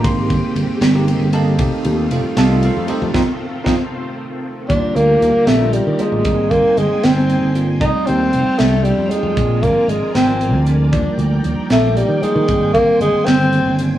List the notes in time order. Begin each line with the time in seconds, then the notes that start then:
Already playing: D#3 G4
0.03 G#1 G#3 A#3 C4 D#4 G4 C6, kick, ride
0.30 G1, kick, ride
0.43 muted fingered electric bass stroke
0.55 G1, ride
0.69 muted fingered electric bass stroke
0.81 G1, snare, ride
0.94 A#3 C4 D#4 G4
1.08 ride
1.20 G1
1.32 A#3 C4 D#4 G4 A4 D#5 F5 A5, ride
1.59 F1 G3 A3 C4 D#4 F4 G4, kick, ride
1.85 D#2, ride
2.11 F1 F4 A4 C5 F5, ride
2.24 muted fingered electric bass stroke
2.37 C2 A4 D#5 F5 A5, snare, ride
2.49 A3 C4 D#4 F4
2.63 F4 A4 C5 F5, ride
2.77 F2
2.86 A3 C4 D#4 G4 A4 C5 D#5, muted fingered electric bass stroke, ride
3.02 F2
3.14 F2 C4 D#4 F4 C5 D#5 F5, kick, snare
3.64 F2 C4 D#4 F4 C5 D#5 F5, kick, snare
4.69 D#2 D3 G3 A#3 D4 F4 G4 A#4 D5, kick, closed hi-hat
4.95 D2 A#3, closed hi-hat
5.21 D#2, closed hi-hat
5.47 A#1 A3, snare, closed hi-hat
5.61 G3 A#3 D4 F4
5.73 G3, closed hi-hat
5.87 D#3
5.98 G3 G#3 A#3 D4 F4, muted fingered electric bass stroke, closed hi-hat
6.12 A1
6.23 G#1 G3 A#3 C4 D#4 C5 G5 G#5, kick, closed hi-hat
6.51 G1 A#3, kick, closed hi-hat
6.65 muted fingered electric bass stroke
6.77 G1 G#3, closed hi-hat
6.92 muted fingered electric bass stroke
7.04 G1 C4, snare, closed hi-hat
7.16 G3 A#3 C4 D#4
7.30 closed hi-hat
7.43 G1
7.55 G3 A#3 C4 F4, closed hi-hat
7.80 F1 G3 A3 C4 D#4 F4 A4 F5 G5, kick, closed hi-hat
8.07 D#2 C4, closed hi-hat
8.33 F1, closed hi-hat
8.47 muted fingered electric bass stroke
8.59 C2 A3, snare, closed hi-hat
8.71 G3 A3 C4 D4
8.84 G3, closed hi-hat
8.98 F2
9.09 G3 G#3 A3 C4 D#4, muted fingered electric bass stroke, closed hi-hat
9.23 F2
9.35 A#1 F3 G#3 C4 D4 A#4 D5 G#5, kick, closed hi-hat
9.62 G#1 A#3, kick, closed hi-hat
9.76 muted fingered electric bass stroke
9.88 G#1 G#3, closed hi-hat
10.02 muted fingered electric bass stroke
10.15 G#1 C4, snare, closed hi-hat
10.27 F3 G#3 C4 F4
10.41 closed hi-hat
10.54 D2
10.67 F3 G#3 C4 D4, closed hi-hat
10.92 D#2 D#3 F3 G3 A#3 D4 A#4 G5, kick, closed hi-hat
11.18 D2, closed hi-hat
11.44 D#2, closed hi-hat
11.70 A#1 A3, snare, closed hi-hat
11.84 F3 G3 A#3 D#4
11.97 G3, closed hi-hat
12.08 D#3
12.22 F3 G3 G#3 A#3 D#4, muted fingered electric bass stroke, closed hi-hat
12.36 D#3
12.48 G#1 D#3 G3 A#3 C4 C5 G#5, kick, closed hi-hat
12.74 G1 A#3, kick, closed hi-hat
13.00 G1 G#3, closed hi-hat
13.13 muted fingered electric bass stroke
13.25 G1 C4, snare, closed hi-hat
13.40 D#3 G3 A#3 C4
13.53 closed hi-hat
13.66 G1
13.79 D#3 G3 A#3 C4, closed hi-hat